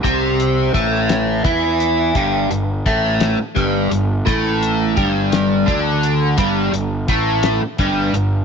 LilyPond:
<<
  \new Staff \with { instrumentName = "Overdriven electric guitar" } { \clef bass \time 6/8 \key g \mixolydian \tempo 4. = 57 <c c'>4 <a, a>4 <e e'>4 | <g, g>8 g,8 <a, a>8. r16 <g, g>8 g,8 | <a, a>4 <g, g>4 <d d'>4 | <g, g>8 g,8 <a, a>8. r16 <g, g>8 g,8 | }
  \new Staff \with { instrumentName = "Fingered electric bass" } { \clef bass \time 6/8 \key g \mixolydian c,4 a,,4 e,4 | g,,8 g,,8 a,,8. r16 g,,8 g,,8 | a,,4 g,,4 d,4 | g,,8 g,,8 a,,8. r16 g,,8 g,,8 | }
  \new DrumStaff \with { instrumentName = "Drums" } \drummode { \time 6/8 <hh bd>8 hh8 <hh bd>8 <hh sn>8 <hh bd>8 hh8 | <hh bd>8 hh8 <hh bd>8 <hh sn>8 <hh bd>8 hh8 | <hh bd>8 hh8 <hh bd>8 <hh sn>8 <hh bd>8 hh8 | <hh bd>8 hh8 <hh bd>8 <hh sn>8 <hh bd>8 hh8 | }
>>